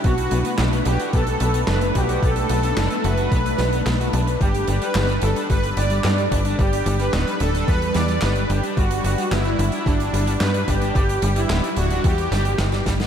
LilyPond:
<<
  \new Staff \with { instrumentName = "Supersaw synth" } { \time 4/4 \key g \major \tempo 4 = 110 fis'4 r8 g'8 a'4 b'8 g'8 | a'4. b'2 r8 | g'8. b'8. a'8 b'8 d''4 r8 | g'8. b'8. a'8 b'8 d''8 b'8 g'8 |
fis'4 e'4 d'4 b'8 g'8~ | g'8. e'8. fis'8 g'4. r8 | }
  \new Staff \with { instrumentName = "Analog synth pad" } { \time 4/4 \key g \major << { d'1~ | d'1~ | d'1~ | d'1~ |
d'1~ | d'1 | } \\ { <a b'>1~ | <a b'>1 | g1~ | g1~ |
g1~ | g1 | } >> }
  \new Staff \with { instrumentName = "Overdriven electric guitar" } { \time 4/4 \key g \major b16 r16 b16 b16 d'16 b16 fis'16 fis'16 b16 r16 b16 b16 d'16 b16 fis'16 fis'16 | b16 r16 b16 b16 d'16 b16 fis'16 fis'16 b16 r16 b16 b16 b16 fis'16 d'16 b'16 | g16 r16 g16 g16 b16 g16 d'16 d'16 g16 r16 g16 g16 b16 g16 d'16 d'16 | g16 r16 g16 g16 b16 g16 d'16 d'16 g16 r16 g16 g16 b16 g16 d'16 d'16 |
g16 r16 g16 g16 b16 g16 d'16 d'16 g16 r16 g16 g16 b16 g16 d'16 d'16 | g16 r16 g16 g16 b16 g16 d'16 d'16 g16 r16 g16 g'16 g'16 g16 g16 b16 | }
  \new Staff \with { instrumentName = "Analog synth bass" } { \clef bass \time 4/4 \key g \major b,,8 b,,8 b,,8 b,,8 b,,8 b,,8 fis,,8 b,,8 | b,,8 b,,8 fis,,8 fis,,8 b,,8 b,,8 b,,8 b,,8 | g,,8 g,,8 g,,8 g,,8 g,,8 g,,8 g,8 g,,8 | g,,8 g,,8 d,,8 d,,8 e,8 e,8 g,,8 g,,8 |
g,,8 g,,8 g,,8 g,,8 g,,8 g,,8 g,8 g,,8 | g,,8 g,,8 d,,8 d,,8 e,8 g,,8 g,,8 g,,8 | }
  \new DrumStaff \with { instrumentName = "Drums" } \drummode { \time 4/4 <hh bd>16 hh16 hh16 hh16 <hc hh sn>16 hh16 hh16 hh16 <hh bd>16 hh16 hh16 hh16 <hc hh sn>16 hh16 <hh bd>16 hh16 | <hh bd>16 hh16 hh16 hh16 <hc hh sn>16 hh16 hh16 hh16 <hh bd>16 hh16 <hh sn>16 hh16 <hc hh sn>16 hh16 hh16 hh16 | <hh bd>16 hh16 hh16 hh16 <hc hh sn>16 hh16 hh16 hh16 <hh bd>16 hh16 hh16 hh16 <hc hh sn>16 hh16 <hh bd>16 hh16 | <hh bd>16 hh16 hh16 hh16 <hc hh sn>16 hh16 hh16 hh16 <hh bd>16 hh16 <hh sn>16 hh16 <hc hh sn>16 hh16 hh16 hh16 |
<hh bd>16 hh16 hh16 hh16 <hc hh sn>16 hh16 hh16 hh16 <hh bd>16 hh16 hh16 hh16 <hc hh sn>16 hh16 <hh bd>16 hh16 | <hh bd>16 hh16 hh16 hh16 <hc hh sn>16 hh16 hh16 hh16 <hh bd>16 hh16 <hh sn>16 hh16 <hc hh sn>16 <hh sn>16 <hh bd sn>16 <hh sn>16 | }
>>